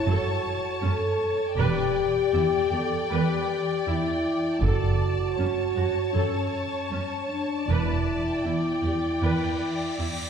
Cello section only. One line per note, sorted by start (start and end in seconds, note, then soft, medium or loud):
0.07 0.15 F#2 medium
0.83 0.91 F#2 soft
1.59 1.67 E2 soft
2.34 2.42 E2 soft
2.73 2.81 E2 soft
3.11 3.19 E2 soft
3.87 3.95 E2 soft
4.62 4.70 F#2 soft
5.38 5.46 F#2 soft
5.76 5.84 F#2 soft
6.14 6.22 F#2 soft
6.91 6.99 F#2 soft
7.68 7.76 E2 soft
8.44 8.52 E2 soft
8.83 8.91 E2 soft
9.22 9.30 E2 soft
9.99 10.07 E2 soft